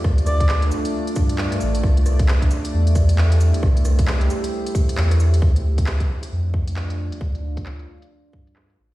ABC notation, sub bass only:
X:1
M:4/4
L:1/8
Q:"Swing 16ths" 1/4=134
K:Dm
V:1 name="Sub bass" clef=bass
D,,3 z2 G,,2 A,,, | C,,3 z E,,3 z | C,,3 z3 E,,2 | D,,3 z F,,3 z |
D,,3 z2 G,,2 A,,, |]